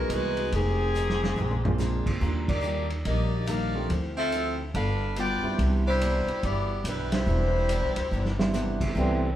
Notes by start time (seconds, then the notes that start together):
Already playing: G#3 B3 D#4 F#4 B4
0.09 C2 E3 G#3 A#3 D#4 F#4 G#4 B4, hi-hat pedal, ride
0.37 ride
0.52 F1 D#3 F3 G#3 C4 D#4 G4 G#4, kick, ride
0.95 F3 G#3 D#4 G4, hi-hat pedal
1.10 snare
1.24 snare
1.36 A#1 A#2 F3 G#3 D4, floor tom
1.51 floor tom
1.64 G#3 A#3 C4 D4 F4, floor tom
1.78 A#2 F3 G#3 D4, snare, hi-hat pedal
2.06 muted upright bass stroke, kick, crash
2.21 D#2 D#3 G3 A#3 D4 F4, kick
2.48 A#3 D#4 G4 D5, kick, crash
2.61 D#3 G3 A#3 D4, hi-hat pedal
2.90 ride
3.05 A#1 D#3 G3 A#3 D4 G4 D5 D#5, kick, ride
3.46 D#3 G3 A#3 D4 D#4 A#4 D5 F5, hi-hat pedal, ride
3.75 F3 A3 C4 D4 G4
3.90 D2 D3 F3 C4 E4, kick, ride
4.17 C4 F4 A4 E5
4.32 D3 F3 C4 E4, hi-hat pedal, ride
4.74 G1 G3 B3 D4 F4 A4 B4 F5, kick, ride
4.78 A4
5.16 G3 B3 F4 A4 B4 D5 G5, hi-hat pedal, ride
5.43 G3 B3 C4 D4 E4, muted upright bass stroke
5.58 C2 C3 E3 B3 D4, kick, ride
5.87 G3 D4 E4 C5
6.01 C3 E3 B3 D4, hi-hat pedal, ride
6.27 muted upright bass stroke, ride
6.43 G1 C3 E3 B3 D4 E4 G4 D5, kick, ride
6.84 B1 C3 E3 B3 D4 B4, hi-hat pedal, ride
6.88 G3 D4 E4
7.11 G3 C4 D4 E4 C5, snare, ride
7.26 E1 C3 E3 B3 D4
7.69 C3 E3 B3 D4, hi-hat pedal, ride
7.82 B1
7.96 C#2, ride
8.11 G1 C3 E3 B3 D4
8.25 snare
8.39 G3 B3 C4 D4 E4, snare
8.53 C3 E3 B3 D4, snare, hi-hat pedal
8.81 kick, crash
8.95 C2 C3 D3 E3 G3 B3 C4 D4 E4, kick
9.32 C#4